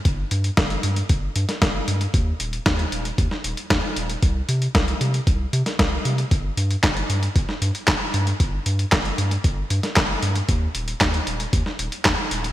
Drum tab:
HH |x-xxxxxxx-xxx-xx|x-xxxxxxx-xxx-xx|x-xxxxxxx-xxx-xx|x-xxxxxxx-xxx-xx|
CP |----------------|----------------|----------------|----x-------x---|
SD |----o------oo---|----o----o--o---|----o------oo---|----o----o--o---|
BD |o---o---o---o---|o---o---o---o---|o---o---o---o---|o---o---o---o---|

HH |x-xxxxxxx-xxx-xx|x-xxxxxxx-xxx-xx|
CP |----x-------x---|----x-------x---|
SD |----o------oo---|----o----o--o---|
BD |o---o---o---o---|o---o---o---o---|